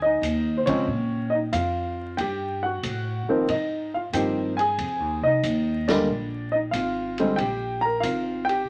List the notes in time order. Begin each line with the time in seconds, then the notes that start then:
Already playing: D2
0.02 D#4 D#5
0.22 D#2, hi-hat pedal, ride
0.57 C5
0.66 C#3 F3 G#3 C4 C#4 C#5, muted upright bass stroke, kick, ride
0.88 A#2
1.30 D#5
1.35 D#4
1.53 F2 F4 F5, hi-hat pedal, ride
2.17 G2 G4 G5, ride
2.63 F#4 F#5
2.83 A2, hi-hat pedal, ride
3.28 D#3 F3 A#3 C4, muted upright bass stroke
3.48 G#2 D#5, ride
3.52 D#4
3.94 F4 F5
4.13 G2 D#3 F3 A#3 C4 G5, hi-hat pedal, ride
4.17 G4
4.57 G#4 G#5, ride
4.78 F2, ride
5.00 D#2
5.22 C2 D#5
5.27 D#4
5.43 D#2, hi-hat pedal, ride
5.88 D3 G3 G#3 A#3 D4 D5, snare, ride
6.08 A#1
6.52 D#4 D#5
6.71 G#1 F5, hi-hat pedal, ride
6.75 F4
7.18 D3 G3 G#3 C4, ride
7.36 A#1 G5, ride
7.40 G4
7.81 A#5
7.85 A#4
8.00 G#1 F4 F5, hi-hat pedal, ride
8.45 G5
8.49 G4, ride